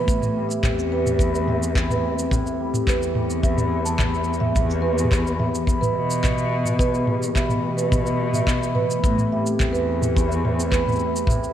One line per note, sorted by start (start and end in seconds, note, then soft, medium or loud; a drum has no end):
0.00 0.12 E2 medium
0.00 0.35 G3 medium
0.00 0.70 B3 medium
0.00 1.19 E4 medium
0.00 9.00 G4 medium
0.08 2.31 A2 medium
0.08 0.42 A2 medium
0.08 4.52 A3 medium
0.08 4.52 C4 medium
0.08 kick loud
0.08 shaker medium
0.22 mid tom medium
0.22 shaker soft
0.36 0.92 G3 medium
0.49 0.62 E5 medium
0.49 shaker medium
0.63 2.66 E2 medium
0.63 1.47 C4 medium
0.63 kick loud
0.63 clap medium
0.63 mid tom medium
0.63 shaker medium
0.79 shaker soft
0.92 2.60 G3 medium
0.92 1.05 B4 loud
1.06 mid tom medium
1.06 shaker medium
1.19 1.75 E4 medium
1.19 kick loud
1.19 shaker soft
1.35 shaker soft
1.48 2.03 C4 medium
1.48 1.61 E5 medium
1.48 mid tom medium
1.63 shaker medium
1.75 3.43 E4 medium
1.75 kick medium
1.75 clap loud
1.75 shaker medium
1.90 2.03 B4 medium
1.90 mid tom medium
1.90 shaker soft
2.03 2.87 C4 medium
2.19 shaker medium
2.31 4.60 A2 medium
2.31 kick medium
2.31 mid tom medium
2.31 shaker medium
2.46 2.59 E5 medium
2.46 shaker soft
2.60 3.15 G3 medium
2.74 mid tom medium
2.74 shaker medium
2.87 4.48 E2 medium
2.87 3.71 C4 medium
2.87 3.01 B4 medium
2.87 kick loud
2.87 clap medium
2.87 shaker soft
3.03 shaker soft
3.15 4.83 G3 medium
3.15 mid tom medium
3.30 shaker medium
3.43 4.00 E4 medium
3.43 3.56 E5 medium
3.43 kick medium
3.43 shaker soft
3.58 mid tom medium
3.58 shaker soft
3.72 4.27 C4 medium
3.85 3.98 A5 medium
3.85 shaker medium
3.99 5.67 E4 medium
3.99 kick medium
3.99 clap medium
3.99 mid tom medium
3.99 shaker soft
4.14 shaker soft
4.24 5.18 C4 medium
4.24 shaker soft
4.33 shaker soft
4.40 4.54 E5 medium
4.40 mid tom medium
4.55 5.74 E2 loud
4.55 6.79 E2 medium
4.55 9.00 E3 medium
4.55 6.78 B3 medium
4.55 kick medium
4.55 mid tom medium
4.55 shaker medium
4.70 shaker soft
4.82 5.39 G3 medium
4.82 4.96 B4 medium
4.98 shaker medium
5.04 mid tom medium
5.12 5.96 B3 medium
5.12 kick loud
5.12 clap medium
5.12 shaker soft
5.27 shaker soft
5.39 7.08 G3 medium
5.39 5.53 E5 medium
5.39 mid tom medium
5.55 shaker medium
5.67 6.24 E4 medium
5.67 kick medium
5.67 shaker soft
5.81 5.95 B4 medium
5.81 mid tom medium
5.81 shaker soft
5.94 7.28 B2 medium
5.94 6.52 B3 medium
6.10 shaker medium
6.24 7.92 E4 medium
6.24 kick medium
6.24 clap medium
6.24 mid tom medium
6.24 shaker medium
6.37 6.50 E5 medium
6.37 shaker soft
6.52 7.37 B3 medium
6.65 mid tom medium
6.65 shaker medium
6.79 9.09 E2 medium
6.79 11.53 A3 medium
6.79 6.93 B4 loud
6.79 kick loud
6.79 shaker medium
6.94 shaker soft
7.07 7.64 G3 medium
7.07 mid tom medium
7.23 shaker medium
7.35 8.96 B2 medium
7.35 8.20 B3 medium
7.35 7.49 E5 medium
7.35 kick medium
7.35 clap medium
7.35 shaker soft
7.49 mid tom medium
7.49 shaker soft
7.64 9.31 G3 medium
7.77 7.91 B4 medium
7.77 shaker medium
7.92 8.48 E4 medium
7.92 kick loud
7.92 mid tom medium
7.92 shaker soft
8.06 shaker soft
8.20 8.76 B3 medium
8.34 8.47 E5 medium
8.34 mid tom medium
8.34 shaker medium
8.47 10.16 E4 medium
8.47 kick medium
8.47 clap medium
8.47 shaker soft
8.63 shaker soft
8.75 9.66 B3 medium
8.75 8.89 B4 medium
8.75 mid tom medium
8.91 shaker medium
9.02 9.38 A2 medium
9.02 11.27 A2 medium
9.02 11.53 C4 medium
9.02 11.53 G4 medium
9.02 kick loud
9.02 shaker soft
9.18 mid tom medium
9.18 shaker soft
9.32 9.88 G3 medium
9.32 9.46 E5 medium
9.46 shaker medium
9.60 11.53 E2 medium
9.60 10.44 C4 medium
9.60 kick medium
9.60 clap medium
9.60 mid tom medium
9.60 shaker soft
9.73 9.87 B4 loud
9.73 shaker soft
9.88 11.53 G3 medium
10.02 mid tom medium
10.02 shaker medium
10.16 10.72 E4 medium
10.16 kick loud
10.16 shaker soft
10.29 10.43 E5 medium
10.29 shaker soft
10.44 11.00 C4 medium
10.44 mid tom medium
10.60 shaker medium
10.71 11.53 E4 medium
10.71 10.85 B4 loud
10.71 kick medium
10.71 clap medium
10.71 shaker soft
10.88 mid tom medium
10.88 shaker soft
10.92 shaker soft
10.95 shaker soft
10.99 11.53 C4 medium
10.99 shaker soft
11.16 shaker medium
11.27 11.53 A2 medium
11.27 11.41 E5 medium
11.27 kick loud
11.27 mid tom medium
11.27 shaker soft
11.44 shaker soft